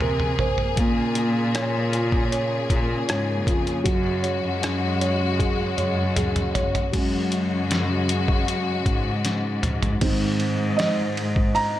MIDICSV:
0, 0, Header, 1, 5, 480
1, 0, Start_track
1, 0, Tempo, 769231
1, 487, Time_signature, 4, 2, 24, 8
1, 7361, End_track
2, 0, Start_track
2, 0, Title_t, "Felt piano"
2, 0, Program_c, 0, 0
2, 0, Control_c, 0, 64, 127
2, 0, Note_on_c, 0, 60, 58
2, 0, Note_on_c, 0, 68, 46
2, 0, Note_on_c, 0, 70, 52
2, 0, Note_on_c, 0, 72, 50
2, 7, Note_off_c, 0, 70, 0
2, 7, Note_on_c, 0, 70, 49
2, 237, Note_off_c, 0, 72, 0
2, 246, Note_on_c, 0, 72, 48
2, 462, Note_off_c, 0, 60, 0
2, 472, Note_off_c, 0, 70, 0
2, 479, Note_off_c, 0, 72, 0
2, 487, Note_on_c, 0, 58, 61
2, 494, Control_c, 0, 64, 0
2, 499, Note_off_c, 0, 68, 0
2, 598, Control_c, 0, 64, 127
2, 729, Note_on_c, 0, 65, 52
2, 965, Note_on_c, 0, 73, 45
2, 1196, Note_off_c, 0, 65, 0
2, 1205, Note_on_c, 0, 65, 47
2, 1432, Note_off_c, 0, 73, 0
2, 1441, Note_on_c, 0, 73, 49
2, 1672, Note_off_c, 0, 65, 0
2, 1681, Note_on_c, 0, 65, 50
2, 1912, Note_off_c, 0, 73, 0
2, 1921, Note_on_c, 0, 73, 46
2, 2149, Note_off_c, 0, 65, 0
2, 2158, Note_on_c, 0, 65, 52
2, 2382, Note_off_c, 0, 58, 0
2, 2389, Note_off_c, 0, 73, 0
2, 2395, Note_off_c, 0, 65, 0
2, 2395, Note_on_c, 0, 54, 62
2, 2414, Control_c, 0, 64, 0
2, 2540, Control_c, 0, 64, 127
2, 2637, Note_on_c, 0, 73, 53
2, 2881, Note_on_c, 0, 61, 47
2, 3112, Note_off_c, 0, 73, 0
2, 3122, Note_on_c, 0, 73, 51
2, 3363, Note_on_c, 0, 68, 54
2, 3592, Note_off_c, 0, 73, 0
2, 3601, Note_on_c, 0, 73, 51
2, 3819, Note_off_c, 0, 61, 0
2, 3834, Note_off_c, 0, 68, 0
2, 3843, Note_on_c, 0, 68, 49
2, 4071, Note_off_c, 0, 73, 0
2, 4081, Note_on_c, 0, 73, 52
2, 4296, Note_off_c, 0, 54, 0
2, 4311, Note_off_c, 0, 68, 0
2, 4316, Note_off_c, 0, 73, 0
2, 4321, Note_on_c, 0, 54, 48
2, 4327, Note_on_c, 0, 56, 43
2, 4331, Note_on_c, 0, 61, 53
2, 4335, Control_c, 0, 64, 0
2, 4463, Control_c, 0, 64, 127
2, 4643, Note_off_c, 0, 54, 0
2, 4646, Note_off_c, 0, 56, 0
2, 4648, Note_off_c, 0, 61, 0
2, 6246, Note_on_c, 0, 51, 58
2, 6249, Note_on_c, 0, 56, 47
2, 6253, Note_on_c, 0, 60, 56
2, 6254, Control_c, 0, 64, 0
2, 6364, Control_c, 0, 64, 127
2, 6718, Note_on_c, 0, 75, 87
2, 6942, Note_off_c, 0, 51, 0
2, 6943, Note_off_c, 0, 56, 0
2, 6945, Note_off_c, 0, 60, 0
2, 7206, Note_on_c, 0, 82, 111
2, 7217, Note_off_c, 0, 75, 0
2, 7361, Note_off_c, 0, 82, 0
2, 7361, End_track
3, 0, Start_track
3, 0, Title_t, "String section"
3, 0, Program_c, 1, 48
3, 0, Note_on_c, 1, 48, 56
3, 0, Note_on_c, 1, 58, 52
3, 0, Note_on_c, 1, 68, 66
3, 465, Note_off_c, 1, 48, 0
3, 490, Note_on_c, 1, 49, 60
3, 2379, Note_off_c, 1, 68, 0
3, 2380, Note_off_c, 1, 58, 0
3, 2411, Note_on_c, 1, 66, 69
3, 2413, Note_on_c, 1, 56, 62
3, 4303, Note_off_c, 1, 49, 0
3, 4309, Note_off_c, 1, 66, 0
3, 4310, Note_off_c, 1, 56, 0
3, 4326, Note_on_c, 1, 49, 61
3, 4326, Note_on_c, 1, 66, 67
3, 4327, Note_on_c, 1, 56, 53
3, 6227, Note_off_c, 1, 49, 0
3, 6227, Note_off_c, 1, 66, 0
3, 6228, Note_off_c, 1, 56, 0
3, 7361, End_track
4, 0, Start_track
4, 0, Title_t, "Cello section"
4, 0, Program_c, 2, 48
4, 0, Note_on_c, 2, 48, 78
4, 218, Note_off_c, 2, 48, 0
4, 482, Note_on_c, 2, 46, 93
4, 1659, Note_off_c, 2, 46, 0
4, 1683, Note_on_c, 2, 46, 89
4, 1908, Note_off_c, 2, 46, 0
4, 1923, Note_on_c, 2, 44, 84
4, 2163, Note_on_c, 2, 41, 77
4, 2165, Note_off_c, 2, 44, 0
4, 2388, Note_off_c, 2, 41, 0
4, 2406, Note_on_c, 2, 42, 102
4, 2741, Note_off_c, 2, 42, 0
4, 2764, Note_on_c, 2, 42, 81
4, 3580, Note_off_c, 2, 42, 0
4, 3606, Note_on_c, 2, 42, 89
4, 4061, Note_off_c, 2, 42, 0
4, 4328, Note_on_c, 2, 42, 96
4, 5502, Note_off_c, 2, 42, 0
4, 5528, Note_on_c, 2, 44, 95
4, 6222, Note_off_c, 2, 44, 0
4, 6250, Note_on_c, 2, 44, 116
4, 7361, Note_off_c, 2, 44, 0
4, 7361, End_track
5, 0, Start_track
5, 0, Title_t, "Drums"
5, 3, Note_on_c, 9, 45, 67
5, 66, Note_off_c, 9, 45, 0
5, 123, Note_on_c, 9, 45, 59
5, 185, Note_off_c, 9, 45, 0
5, 242, Note_on_c, 9, 43, 81
5, 304, Note_off_c, 9, 43, 0
5, 361, Note_on_c, 9, 43, 67
5, 424, Note_off_c, 9, 43, 0
5, 482, Note_on_c, 9, 42, 74
5, 483, Note_on_c, 9, 36, 96
5, 544, Note_off_c, 9, 42, 0
5, 546, Note_off_c, 9, 36, 0
5, 720, Note_on_c, 9, 42, 57
5, 782, Note_off_c, 9, 42, 0
5, 965, Note_on_c, 9, 42, 74
5, 971, Note_on_c, 9, 37, 94
5, 1028, Note_off_c, 9, 42, 0
5, 1033, Note_off_c, 9, 37, 0
5, 1206, Note_on_c, 9, 42, 61
5, 1268, Note_off_c, 9, 42, 0
5, 1325, Note_on_c, 9, 36, 73
5, 1387, Note_off_c, 9, 36, 0
5, 1450, Note_on_c, 9, 42, 62
5, 1513, Note_off_c, 9, 42, 0
5, 1685, Note_on_c, 9, 36, 69
5, 1686, Note_on_c, 9, 42, 56
5, 1747, Note_off_c, 9, 36, 0
5, 1749, Note_off_c, 9, 42, 0
5, 1927, Note_on_c, 9, 42, 74
5, 1933, Note_on_c, 9, 37, 97
5, 1989, Note_off_c, 9, 42, 0
5, 1995, Note_off_c, 9, 37, 0
5, 2165, Note_on_c, 9, 36, 75
5, 2170, Note_on_c, 9, 42, 65
5, 2228, Note_off_c, 9, 36, 0
5, 2232, Note_off_c, 9, 42, 0
5, 2290, Note_on_c, 9, 42, 38
5, 2353, Note_off_c, 9, 42, 0
5, 2406, Note_on_c, 9, 36, 95
5, 2406, Note_on_c, 9, 42, 77
5, 2469, Note_off_c, 9, 36, 0
5, 2469, Note_off_c, 9, 42, 0
5, 2645, Note_on_c, 9, 42, 58
5, 2707, Note_off_c, 9, 42, 0
5, 2890, Note_on_c, 9, 42, 76
5, 2895, Note_on_c, 9, 37, 91
5, 2952, Note_off_c, 9, 42, 0
5, 2958, Note_off_c, 9, 37, 0
5, 3129, Note_on_c, 9, 42, 65
5, 3191, Note_off_c, 9, 42, 0
5, 3369, Note_on_c, 9, 36, 80
5, 3369, Note_on_c, 9, 48, 49
5, 3371, Note_on_c, 9, 42, 66
5, 3431, Note_off_c, 9, 36, 0
5, 3431, Note_off_c, 9, 48, 0
5, 3434, Note_off_c, 9, 42, 0
5, 3607, Note_on_c, 9, 42, 60
5, 3607, Note_on_c, 9, 47, 58
5, 3669, Note_off_c, 9, 42, 0
5, 3669, Note_off_c, 9, 47, 0
5, 3847, Note_on_c, 9, 42, 83
5, 3847, Note_on_c, 9, 45, 74
5, 3909, Note_off_c, 9, 42, 0
5, 3909, Note_off_c, 9, 45, 0
5, 3968, Note_on_c, 9, 42, 50
5, 3969, Note_on_c, 9, 45, 62
5, 4030, Note_off_c, 9, 42, 0
5, 4031, Note_off_c, 9, 45, 0
5, 4087, Note_on_c, 9, 43, 79
5, 4089, Note_on_c, 9, 42, 63
5, 4150, Note_off_c, 9, 43, 0
5, 4151, Note_off_c, 9, 42, 0
5, 4211, Note_on_c, 9, 43, 75
5, 4212, Note_on_c, 9, 42, 37
5, 4274, Note_off_c, 9, 43, 0
5, 4275, Note_off_c, 9, 42, 0
5, 4327, Note_on_c, 9, 42, 84
5, 4327, Note_on_c, 9, 49, 75
5, 4328, Note_on_c, 9, 36, 97
5, 4389, Note_off_c, 9, 49, 0
5, 4390, Note_off_c, 9, 36, 0
5, 4390, Note_off_c, 9, 42, 0
5, 4567, Note_on_c, 9, 42, 59
5, 4629, Note_off_c, 9, 42, 0
5, 4809, Note_on_c, 9, 42, 76
5, 4815, Note_on_c, 9, 38, 97
5, 4872, Note_off_c, 9, 42, 0
5, 4877, Note_off_c, 9, 38, 0
5, 5049, Note_on_c, 9, 42, 70
5, 5112, Note_off_c, 9, 42, 0
5, 5169, Note_on_c, 9, 36, 79
5, 5231, Note_off_c, 9, 36, 0
5, 5293, Note_on_c, 9, 42, 68
5, 5355, Note_off_c, 9, 42, 0
5, 5528, Note_on_c, 9, 36, 76
5, 5529, Note_on_c, 9, 42, 60
5, 5590, Note_off_c, 9, 36, 0
5, 5591, Note_off_c, 9, 42, 0
5, 5770, Note_on_c, 9, 42, 85
5, 5776, Note_on_c, 9, 38, 52
5, 5832, Note_off_c, 9, 42, 0
5, 5838, Note_off_c, 9, 38, 0
5, 6009, Note_on_c, 9, 45, 80
5, 6011, Note_on_c, 9, 42, 66
5, 6072, Note_off_c, 9, 45, 0
5, 6073, Note_off_c, 9, 42, 0
5, 6131, Note_on_c, 9, 43, 78
5, 6132, Note_on_c, 9, 42, 39
5, 6193, Note_off_c, 9, 43, 0
5, 6194, Note_off_c, 9, 42, 0
5, 6248, Note_on_c, 9, 49, 89
5, 6249, Note_on_c, 9, 36, 115
5, 6249, Note_on_c, 9, 51, 77
5, 6311, Note_off_c, 9, 36, 0
5, 6311, Note_off_c, 9, 49, 0
5, 6311, Note_off_c, 9, 51, 0
5, 6488, Note_on_c, 9, 51, 50
5, 6550, Note_off_c, 9, 51, 0
5, 6732, Note_on_c, 9, 51, 69
5, 6737, Note_on_c, 9, 38, 107
5, 6794, Note_off_c, 9, 51, 0
5, 6799, Note_off_c, 9, 38, 0
5, 6972, Note_on_c, 9, 51, 58
5, 7035, Note_off_c, 9, 51, 0
5, 7089, Note_on_c, 9, 36, 88
5, 7152, Note_off_c, 9, 36, 0
5, 7212, Note_on_c, 9, 51, 61
5, 7274, Note_off_c, 9, 51, 0
5, 7361, End_track
0, 0, End_of_file